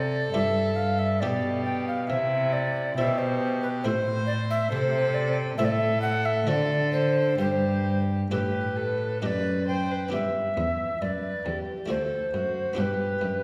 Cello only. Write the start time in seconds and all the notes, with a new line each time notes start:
Already playing: C3
0.33 G2
1.22 B2
2.10 C3
2.98 B2
3.84 A2
4.72 C3
5.59 A2
6.47 D3
7.39 G2
8.31 A2
9.22 F#2
10.12 G2
10.57 E2
11.02 F#2
11.46 E2
11.90 D2
12.34 F#2
12.78 G2
13.22 F#2